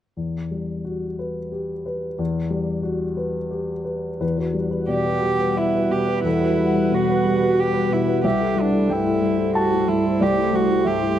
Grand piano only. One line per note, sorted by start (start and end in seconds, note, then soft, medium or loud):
0.17 2.14 E2 soft
0.51 1.06 G3 soft
0.85 1.39 F#4 soft
1.19 1.73 B4 soft
1.52 2.06 G4 soft
1.86 2.39 B4 soft
2.19 4.18 E2 soft
2.50 3.05 G3 soft
2.83 3.38 F#4 soft
3.17 3.72 B4 soft
3.51 4.08 G4 soft
3.85 4.19 B4 soft
4.20 4.38 E2 soft
4.20 4.36 B4 soft
4.37 4.54 F#4 soft
4.37 4.54 B4 soft
4.54 4.82 G3 soft
4.70 4.87 F#4 soft
4.70 4.87 B4 soft
4.88 5.16 B2 soft
4.88 5.53 D5 soft
5.05 5.21 B4 soft
5.22 5.50 G3 soft
5.40 5.71 F#4 soft
5.40 5.71 B4 soft
5.57 6.21 E5 soft
5.74 5.89 F#4 soft
5.74 5.90 B4 soft
5.90 6.18 B2 soft
6.07 6.23 F#4 soft
6.07 6.23 B4 soft
6.24 6.41 E2 soft
6.24 6.88 A4 soft
6.41 6.57 F#4 soft
6.41 6.57 B4 soft
6.57 6.85 G3 soft
6.75 6.90 F#4 soft
6.75 6.91 B4 soft
6.91 7.19 B2 soft
6.91 7.08 B4 soft
7.08 7.24 F#4 soft
7.08 7.24 B4 soft
7.25 7.52 G3 soft
7.41 7.71 F#4 soft
7.41 7.72 B4 soft
7.73 7.89 F#4 soft
7.73 7.89 B4 soft
7.90 8.17 B2 soft
8.07 8.22 F#4 soft
8.07 8.22 B4 soft
8.24 8.40 C2 soft
8.24 8.86 E5 medium
8.40 8.55 E4 soft
8.40 8.55 A4 soft
8.56 8.83 G3 soft
8.72 8.87 E4 soft
8.72 8.88 A4 soft
8.89 9.16 G2 soft
8.89 9.51 G5 soft
9.06 9.21 E4 soft
9.06 9.21 A4 soft
9.22 9.49 G3 soft
9.38 9.68 E4 soft
9.38 9.69 A4 soft
9.55 10.17 A5 medium
9.72 9.87 E4 soft
9.72 9.87 A4 soft
9.88 10.15 G2 soft
10.05 10.20 E4 soft
10.05 10.20 A4 soft
10.20 10.37 C2 soft
10.20 10.82 D5 medium
10.37 10.52 E4 soft
10.37 10.53 A4 soft
10.53 10.79 G3 soft
10.70 10.85 E4 soft
10.70 10.85 A4 soft
10.85 11.12 G2 soft
10.85 11.19 E5 soft
11.01 11.17 E4 soft
11.01 11.17 A4 soft